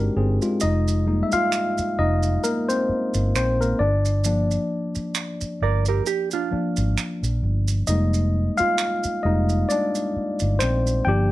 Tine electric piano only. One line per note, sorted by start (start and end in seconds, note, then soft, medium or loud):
0.00 0.43 G#3 medium
0.00 0.17 C4 medium
0.00 0.15 D4 soft
0.00 0.62 D#4 medium
0.00 0.63 F#4 medium
0.00 0.62 G4 medium
0.00 0.15 A#4 medium
0.17 0.40 C4 medium
0.17 0.40 G#4 medium
0.42 0.85 G#3 medium
0.42 0.85 F4 medium
0.61 1.06 D#4 medium
0.61 1.26 D#5 medium
1.06 1.69 G3 soft
1.06 1.69 G#3 soft
1.06 1.69 A#3 soft
1.06 1.69 D#4 soft
1.23 1.31 E5 medium
1.33 1.94 F4 medium
1.33 2.00 F5 medium
1.99 2.41 D#4 medium
1.99 2.45 D#5 loud
2.44 2.67 A#3 medium
2.44 2.69 A#4 medium
2.69 3.30 C4 medium
2.69 3.30 C5 medium
3.36 3.48 C4 medium
3.36 3.47 C5 medium
3.61 3.79 A#3 medium
3.61 3.80 A#4 medium
3.79 4.25 D4 medium
3.79 5.11 D5 medium
4.25 4.87 F3 medium
4.25 4.87 A#3 soft
4.25 4.88 D4 medium
6.51 6.93 F3 soft
6.51 6.93 A#3 soft
6.51 6.94 D4 medium
7.87 9.24 G3 soft
7.87 9.24 G#3 soft
7.87 9.24 A#3 soft
7.87 8.55 D#4 medium
7.87 8.54 D#5 medium
8.57 9.21 F4 medium
8.57 9.26 F5 medium
9.23 9.66 G3 medium
9.23 9.66 G#3 soft
9.23 9.66 A#3 soft
9.23 9.68 D#4 medium
9.23 9.70 D#5 medium
9.69 10.58 D4 medium
9.69 10.63 D5 medium
10.59 11.04 C4 medium
10.59 11.07 C5 medium
11.05 11.32 F3 medium
11.05 11.32 A#3 soft
11.05 11.32 D4 medium
11.05 11.32 G4 medium
11.05 11.32 G5 loud